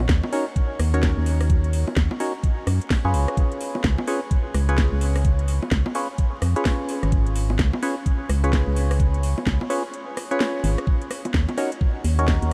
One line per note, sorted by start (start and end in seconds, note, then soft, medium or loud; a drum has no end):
0.00 0.30 C#4 medium
0.00 0.30 D#4 medium
0.00 0.30 F#4 medium
0.00 0.30 A#4 medium
0.00 0.30 C#5 loud
0.00 high bongo medium
0.09 0.22 D#2 loud
0.09 kick loud
0.09 snare loud
0.09 closed hi-hat medium
0.24 high bongo medium
0.33 0.45 C#4 medium
0.33 0.45 D#4 medium
0.33 0.45 F#4 medium
0.33 0.45 A#4 medium
0.33 0.45 C#5 loud
0.33 open hi-hat loud
0.56 kick loud
0.56 closed hi-hat medium
0.79 1.15 D#2 medium
0.79 cross-stick medium
0.79 open hi-hat loud
0.94 2.18 C#4 medium
0.94 2.18 D#4 medium
0.94 2.18 F#4 medium
0.94 2.18 A#4 medium
0.94 2.18 C#5 medium
0.94 closed hi-hat medium
1.03 kick loud
1.03 snare loud
1.03 closed hi-hat medium
1.17 1.85 D#2 medium
1.26 open hi-hat loud
1.41 cross-stick medium
1.41 open hi-hat medium
1.50 kick loud
1.50 closed hi-hat medium
1.64 closed hi-hat soft
1.73 open hi-hat loud
1.88 high bongo medium
1.97 2.09 D#2 loud
1.97 kick loud
1.97 snare loud
1.97 closed hi-hat medium
2.11 high bongo medium
2.20 2.33 C#4 medium
2.20 2.33 D#4 medium
2.20 2.33 F#4 medium
2.20 2.33 A#4 medium
2.20 2.33 C#5 loud
2.20 open hi-hat loud
2.43 kick loud
2.43 closed hi-hat medium
2.67 2.80 F#2 medium
2.67 cross-stick medium
2.67 open hi-hat loud
2.81 closed hi-hat medium
2.90 kick loud
2.90 snare loud
2.90 open hi-hat medium
3.05 3.15 F#2 medium
3.05 4.05 C#4 medium
3.05 4.05 F4 medium
3.05 4.05 G#4 medium
3.05 4.05 B4 medium
3.05 4.05 C#5 loud
3.14 3.27 C#2 medium
3.14 open hi-hat loud
3.28 cross-stick medium
3.28 closed hi-hat soft
3.37 kick loud
3.37 closed hi-hat medium
3.52 closed hi-hat soft
3.61 open hi-hat loud
3.75 high bongo medium
3.84 3.97 C#2 loud
3.84 kick loud
3.84 snare loud
3.84 closed hi-hat medium
3.98 high bongo medium
4.07 4.20 C#4 medium
4.07 4.20 F4 medium
4.07 4.20 G#4 medium
4.07 4.20 B4 medium
4.07 4.20 C#5 loud
4.07 open hi-hat loud
4.31 kick loud
4.31 closed hi-hat medium
4.54 4.90 C#2 medium
4.54 cross-stick medium
4.54 open hi-hat loud
4.69 5.93 C#4 medium
4.69 5.93 F4 medium
4.69 5.93 G#4 medium
4.69 5.93 B4 medium
4.69 5.93 C#5 loud
4.69 closed hi-hat medium
4.78 kick loud
4.78 snare loud
4.78 closed hi-hat medium
4.92 5.60 C#2 medium
5.01 open hi-hat loud
5.16 cross-stick medium
5.16 open hi-hat medium
5.25 kick loud
5.25 closed hi-hat medium
5.39 closed hi-hat soft
5.48 open hi-hat loud
5.63 high bongo medium
5.71 5.84 C#2 loud
5.71 kick loud
5.71 snare loud
5.71 closed hi-hat medium
5.86 high bongo medium
5.95 6.08 C#4 medium
5.95 6.08 F4 medium
5.95 6.08 G#4 medium
5.95 6.08 B4 medium
5.95 6.08 C#5 loud
5.95 open hi-hat loud
6.18 kick loud
6.18 closed hi-hat medium
6.42 6.55 F2 medium
6.42 cross-stick medium
6.42 open hi-hat loud
6.56 7.80 C#4 medium
6.56 7.80 F4 medium
6.56 7.80 G#4 medium
6.56 7.80 B4 medium
6.56 7.80 C#5 loud
6.56 closed hi-hat medium
6.65 kick loud
6.65 snare loud
6.65 open hi-hat medium
6.89 open hi-hat loud
7.03 7.57 G#1 medium
7.03 cross-stick medium
7.03 closed hi-hat soft
7.12 kick loud
7.12 closed hi-hat medium
7.27 closed hi-hat soft
7.36 open hi-hat loud
7.50 high bongo medium
7.59 7.72 C#2 loud
7.59 kick loud
7.59 snare loud
7.59 closed hi-hat medium
7.73 high bongo medium
7.83 7.95 C#4 medium
7.83 7.95 F4 medium
7.83 7.95 G#4 medium
7.83 7.95 B4 medium
7.83 7.95 C#5 medium
7.83 open hi-hat loud
8.06 kick loud
8.06 closed hi-hat medium
8.29 8.65 C#2 medium
8.29 cross-stick medium
8.29 open hi-hat loud
8.44 9.68 C#4 medium
8.44 9.68 F4 medium
8.44 9.68 G#4 medium
8.44 9.68 B4 medium
8.44 9.68 C#5 loud
8.44 closed hi-hat medium
8.53 kick loud
8.53 snare loud
8.53 closed hi-hat medium
8.67 9.35 C#2 medium
8.76 open hi-hat loud
8.91 cross-stick medium
8.91 open hi-hat medium
9.00 kick loud
9.00 closed hi-hat medium
9.14 closed hi-hat soft
9.23 open hi-hat loud
9.38 high bongo medium
9.46 9.59 C#2 loud
9.46 kick loud
9.46 snare loud
9.46 closed hi-hat medium
9.61 high bongo medium
9.70 9.83 C#4 medium
9.70 9.83 F4 medium
9.70 9.83 G#4 medium
9.70 9.83 B4 medium
9.70 9.83 C#5 loud
9.70 open hi-hat loud
9.94 closed hi-hat medium
10.17 cross-stick medium
10.17 open hi-hat loud
10.31 10.86 C#4 medium
10.31 10.86 F4 medium
10.31 10.86 G#4 medium
10.31 10.86 B4 medium
10.31 10.86 C#5 loud
10.31 closed hi-hat medium
10.40 snare loud
10.40 open hi-hat medium
10.64 10.77 G#1 medium
10.64 open hi-hat loud
10.78 cross-stick medium
10.78 closed hi-hat soft
10.87 kick loud
11.02 closed hi-hat soft
11.11 cross-stick medium
11.11 open hi-hat loud
11.25 closed hi-hat medium
11.25 high bongo medium
11.34 11.47 D#2 loud
11.34 kick loud
11.34 snare loud
11.49 closed hi-hat soft
11.49 high bongo medium
11.58 11.70 C#4 medium
11.58 11.70 D#4 medium
11.58 11.70 F#4 medium
11.58 11.70 A#4 medium
11.58 11.70 C#5 loud
11.58 cross-stick medium
11.58 open hi-hat loud
11.72 closed hi-hat medium
11.81 kick loud
12.04 12.40 D#2 medium
12.04 open hi-hat loud
12.19 12.53 C#4 medium
12.19 12.53 D#4 medium
12.19 12.53 F#4 medium
12.19 12.53 A#4 medium
12.19 12.53 C#5 loud
12.19 closed hi-hat medium
12.28 kick loud
12.28 snare loud
12.42 12.53 D#2 medium
12.42 closed hi-hat soft